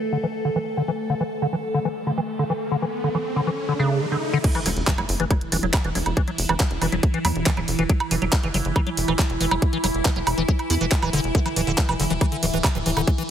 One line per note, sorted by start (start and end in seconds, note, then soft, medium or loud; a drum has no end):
0.00 4.45 A3 medium
0.00 4.45 A4 medium
0.13 0.17 D3 medium
0.23 0.26 E3 medium
0.45 0.50 D3 medium
0.56 0.59 E3 medium
0.77 0.82 D3 medium
0.88 0.91 E3 medium
0.99 riser medium
1.10 1.15 D3 medium
1.20 1.23 E3 medium
1.42 1.47 D3 medium
1.53 1.56 E3 medium
1.74 1.79 D3 medium
1.85 1.88 E3 medium
2.07 2.12 D3 medium
2.18 2.20 E3 medium
2.39 2.44 D3 medium
2.50 2.53 E3 medium
2.71 2.76 D3 medium
2.82 2.85 E3 medium
3.04 3.09 D3 medium
3.15 3.18 E3 medium
3.36 3.41 D3 medium
3.47 3.50 E3 medium
3.69 3.73 D3 medium
3.79 4.03 C#3 loud
4.01 4.06 E3 medium
4.12 4.17 D3 medium
4.33 4.38 D3 loud
4.44 13.30 E3 medium
4.44 13.30 E4 medium
4.44 kick loud
4.44 closed hi-hat medium
4.44 crash loud
4.44 impact medium
4.55 4.60 E3 medium
4.55 closed hi-hat soft
4.55 high woodblock soft
4.66 4.73 E1 medium
4.66 4.69 F#3 medium
4.66 open hi-hat loud
4.77 4.84 E1 medium
4.77 closed hi-hat soft
4.87 4.92 E3 medium
4.87 kick loud
4.87 clap loud
4.87 closed hi-hat medium
4.98 5.06 F#1 medium
4.98 5.01 F#3 medium
4.98 closed hi-hat soft
4.98 high woodblock medium
5.09 5.16 F#1 loud
5.09 open hi-hat medium
5.20 5.27 F#1 medium
5.20 5.25 E3 medium
5.20 closed hi-hat soft
5.30 5.33 F#3 medium
5.30 kick loud
5.30 closed hi-hat medium
5.30 high woodblock soft
5.41 closed hi-hat soft
5.52 5.60 E1 medium
5.52 5.57 E3 medium
5.52 open hi-hat loud
5.63 5.70 E1 medium
5.63 5.66 F#3 medium
5.63 closed hi-hat soft
5.74 kick loud
5.74 clap loud
5.74 closed hi-hat medium
5.74 high woodblock medium
5.84 5.92 E1 medium
5.84 5.89 E3 medium
5.84 closed hi-hat soft
5.95 6.03 E1 medium
5.95 5.98 F#3 medium
5.95 open hi-hat medium
6.06 6.13 E1 medium
6.06 closed hi-hat soft
6.06 high woodblock soft
6.17 6.22 E3 medium
6.17 kick loud
6.17 closed hi-hat medium
6.28 6.31 F#3 medium
6.28 closed hi-hat soft
6.38 6.46 E1 loud
6.38 open hi-hat loud
6.49 6.57 E1 medium
6.49 6.54 E3 medium
6.49 closed hi-hat soft
6.49 high woodblock medium
6.60 6.63 F#3 medium
6.60 kick loud
6.60 clap loud
6.60 closed hi-hat medium
6.71 6.78 E1 medium
6.71 closed hi-hat soft
6.82 6.89 E1 loud
6.82 6.86 E3 medium
6.82 open hi-hat medium
6.82 high woodblock soft
6.92 7.00 E1 medium
6.92 6.95 F#3 medium
6.92 closed hi-hat soft
7.03 kick loud
7.03 closed hi-hat medium
7.14 7.19 E3 medium
7.14 closed hi-hat soft
7.25 7.32 E2 medium
7.25 7.28 F#3 medium
7.25 open hi-hat loud
7.25 high woodblock medium
7.36 7.43 E1 medium
7.36 closed hi-hat soft
7.46 7.51 E3 medium
7.46 kick loud
7.46 clap loud
7.46 closed hi-hat medium
7.57 7.65 D1 medium
7.57 7.60 F#3 medium
7.57 closed hi-hat soft
7.57 high woodblock soft
7.68 7.75 E1 medium
7.68 open hi-hat loud
7.79 7.86 E1 medium
7.79 7.84 E3 medium
7.79 closed hi-hat soft
7.89 7.92 F#3 medium
7.89 kick loud
7.89 closed hi-hat medium
8.00 closed hi-hat soft
8.00 high woodblock medium
8.11 8.19 E1 loud
8.11 8.16 E3 medium
8.11 open hi-hat loud
8.22 8.29 E1 medium
8.22 8.25 F#3 medium
8.22 closed hi-hat soft
8.33 kick loud
8.33 clap loud
8.33 closed hi-hat medium
8.33 high woodblock soft
8.43 8.51 F#1 medium
8.43 8.48 E3 medium
8.43 closed hi-hat soft
8.54 8.62 F#1 loud
8.54 8.57 F#3 medium
8.54 open hi-hat loud
8.65 8.72 F#1 medium
8.65 closed hi-hat soft
8.76 8.81 E3 medium
8.76 kick loud
8.76 closed hi-hat medium
8.76 high woodblock medium
8.87 8.90 F#3 medium
8.87 closed hi-hat soft
8.97 9.05 E1 medium
8.97 open hi-hat loud
9.08 9.16 E1 medium
9.08 9.13 E3 medium
9.08 closed hi-hat soft
9.08 high woodblock soft
9.19 9.22 F#3 medium
9.19 kick loud
9.19 clap loud
9.19 closed hi-hat medium
9.30 9.37 E1 medium
9.30 closed hi-hat soft
9.41 9.48 E1 medium
9.41 9.45 E3 medium
9.41 open hi-hat loud
9.51 9.59 E1 medium
9.51 9.54 F#3 medium
9.51 closed hi-hat soft
9.51 high woodblock medium
9.62 kick loud
9.62 closed hi-hat medium
9.73 9.78 E3 medium
9.73 closed hi-hat soft
9.84 9.91 E1 medium
9.84 9.87 F#3 medium
9.84 open hi-hat loud
9.84 high woodblock soft
9.94 10.02 E1 medium
9.94 closed hi-hat soft
10.05 10.10 E3 medium
10.05 kick loud
10.05 clap loud
10.05 closed hi-hat medium
10.16 10.24 E1 medium
10.16 10.19 F#3 medium
10.16 closed hi-hat soft
10.27 10.34 E1 loud
10.27 open hi-hat loud
10.27 high woodblock medium
10.38 10.45 E1 medium
10.38 10.43 E3 medium
10.38 closed hi-hat soft
10.48 10.51 F#3 medium
10.48 kick loud
10.48 closed hi-hat medium
10.59 closed hi-hat soft
10.59 high woodblock soft
10.70 10.78 E2 medium
10.70 10.75 E4 medium
10.70 open hi-hat loud
10.81 10.88 E1 medium
10.81 10.86 E3 medium
10.81 closed hi-hat soft
10.92 kick loud
10.92 clap loud
10.92 closed hi-hat medium
11.02 11.10 D1 medium
11.02 11.10 E3 medium
11.02 closed hi-hat soft
11.02 high woodblock medium
11.13 11.21 E1 medium
11.13 11.21 D3 loud
11.13 open hi-hat loud
11.24 11.31 E1 medium
11.24 closed hi-hat soft
11.35 11.40 D3 medium
11.35 kick loud
11.35 closed hi-hat medium
11.46 11.49 E3 medium
11.46 closed hi-hat soft
11.46 high woodblock soft
11.56 11.64 D1 medium
11.56 11.61 E3 medium
11.56 open hi-hat loud
11.67 11.75 D1 medium
11.67 11.72 D3 medium
11.67 closed hi-hat soft
11.78 11.81 E3 medium
11.78 kick loud
11.78 clap loud
11.78 closed hi-hat medium
11.89 11.96 E1 medium
11.89 11.94 E3 medium
11.89 closed hi-hat soft
11.89 high woodblock medium
12.00 12.07 E1 loud
12.00 12.04 D3 medium
12.00 open hi-hat loud
12.10 12.18 E1 medium
12.10 12.13 E3 medium
12.10 closed hi-hat soft
12.21 12.26 E3 medium
12.21 kick loud
12.21 closed hi-hat medium
12.21 high woodblock soft
12.32 12.37 D3 medium
12.32 closed hi-hat soft
12.43 12.50 D1 medium
12.43 12.46 E3 medium
12.43 open hi-hat loud
12.54 12.61 D1 medium
12.54 12.58 E3 medium
12.54 closed hi-hat soft
12.64 12.69 D3 medium
12.64 kick loud
12.64 clap loud
12.64 closed hi-hat medium
12.64 high woodblock medium
12.75 12.83 D1 medium
12.75 12.78 E3 medium
12.75 closed hi-hat soft
12.86 12.93 D1 medium
12.86 12.91 E3 medium
12.86 open hi-hat medium
12.97 13.04 D1 medium
12.97 13.02 D3 medium
12.97 closed hi-hat soft
12.97 high woodblock soft
13.07 13.10 E3 medium
13.07 kick loud
13.07 closed hi-hat medium
13.18 13.23 E3 medium
13.18 closed hi-hat soft